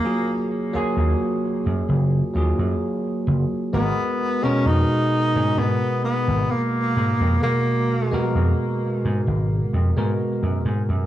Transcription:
<<
  \new Staff \with { instrumentName = "Tine electric piano" } { \time 4/4 \key gis \dorian \tempo 4 = 65 <fis ais eis' gis'>8. <fis ais eis' gis'>4.~ <fis ais eis' gis'>16 <fis ais eis' gis'>4. | <gis b fis' ais'>8. <b, gis fis' ais'>2.~ <b, gis fis' ais'>16 | <b, gis fis' ais'>8. <gis b fis' ais'>4.~ <gis b fis' ais'>16 r16 <gis b fis' ais'>16 r4 | }
  \new Staff \with { instrumentName = "Tenor saxophone" } { \time 4/4 \key gis \dorian ais8 r2. r8 | b8. cis'16 dis'4 b8 b8 ais4 | ais4 r2. | }
  \new Staff \with { instrumentName = "Slap bass" } { \clef bass \time 4/4 \key gis \dorian r4 dis,16 r8 fis,16 fis,,16 r16 dis,16 fis,16 r8 fis,,16 r16 | gis,,16 r8. eis,16 r8 gis,16 gis,16 r8 gis,,16 r8 gis,16 eis,16 | r4 eis,16 r8 gis,16 gis,,16 r16 eis,16 gis,16 r16 fis,16 gis,16 fis,16 | }
>>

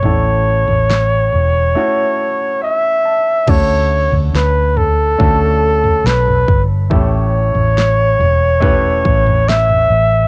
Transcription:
<<
  \new Staff \with { instrumentName = "Flugelhorn" } { \time 4/4 \key d \major \tempo 4 = 70 cis''2. e''4 | cis''4 b'8 a'4. b'8 r8 | cis''2. e''4 | }
  \new Staff \with { instrumentName = "Grand piano" } { \time 4/4 \key d \major <a cis' e' a'>2 <a cis' e' fis'>2 | <a cis' d' fis' a'>2 <a cis' d' fis' a'>2 | <a cis' e' g' a'>2 <a cis' e' g' b'>2 | }
  \new Staff \with { instrumentName = "Grand piano" } { \clef bass \time 4/4 \key d \major a,4. r4. e''8 a''8 | d4. r2 r8 | a,4. r2 r8 | }
  \new Staff \with { instrumentName = "Fingered electric bass" } { \clef bass \time 4/4 \key d \major a,,8. a,,8. e,,8 r2 | d,8. d,16 d,4 d,4 b,,8 g,,8 | a,,8. a,,8. e,,4 a,,4 a,,8 | }
  \new DrumStaff \with { instrumentName = "Drums" } \drummode { \time 4/4 tomfh8. tomfh16 sn8 tomfh8 r4 r4 | <cymc bd tomfh>8. tomfh16 sn8 tomfh8 <bd tomfh>8. tomfh16 sn16 tomfh16 bd8 | <bd tomfh>8. tomfh16 sn8 tomfh8 <bd tomfh>8 bd16 tomfh16 sn16 tomfh8. | }
>>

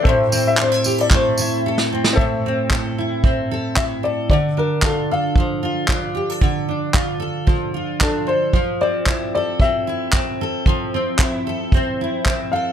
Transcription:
<<
  \new Staff \with { instrumentName = "Upright piano" } { \time 4/4 \key d \minor \tempo 4 = 113 c''8. e''16 c''8. d''16 c''4. r8 | r2. e''8 d''8 | d''8 bes'8 a'8 f''2 r8 | r2. a'8 c''8~ |
c''8 d''4 d''8 e''4 r4 | r2. r8 f''8 | }
  \new Staff \with { instrumentName = "Grand piano" } { \time 4/4 \key d \minor <c' a' e''>1 | <c' a' e''>1 | r1 | r1 |
r1 | r1 | }
  \new Staff \with { instrumentName = "Steel-string acoustic guitar" } { \time 4/4 \key d \minor a,8 c'8 d'16 e'16 g'16 a'16 a8 e'8 a'8 c'8 | a,8 c'8 a'8 e'8 c'8 a'8 e'8 a'8 | d8 d'8 f'8 a'8 f8 f'8 d'8 g'16 a'16 | d8 d'8 f'8 a'8 f8 f'8 d'8 a'8 |
f8 c'8 e'8 a'8 c'8 e'8 c'8 a'8 | f8 c'8 e'8 a'8 c'8 e'8 c'8 a'8 | }
  \new DrumStaff \with { instrumentName = "Drums" } \drummode { \time 4/4 bd8 tamb8 hc8 tamb8 <hc bd>8 tamb8 r16 sn8 sn16 | bd4 <hc bd>4 bd4 <hc bd>4 | bd4 <hc bd>4 bd4 <hc bd>4 | bd4 <hc bd>4 bd4 <hc bd>4 |
bd4 <hc bd>4 bd4 <hc bd>4 | bd4 <hc bd>4 bd4 <hc bd>4 | }
>>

